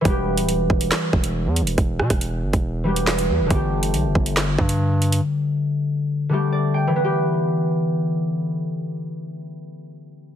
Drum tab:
HH |x--xx--x---x--xx|x--xx--x---x-x--|x--xx--x---x--xx|----------------|
CP |--------x-------|------------x---|--------x-------|----------------|
SD |--------o-------|--rr--------o---|--------o-------|----------------|
BD |o-----o---o-----|o--o---o--------|o-----o---o-----|----------------|

HH |----------------|----------------|
CP |----------------|----------------|
SD |----------------|----------------|
BD |----------------|----------------|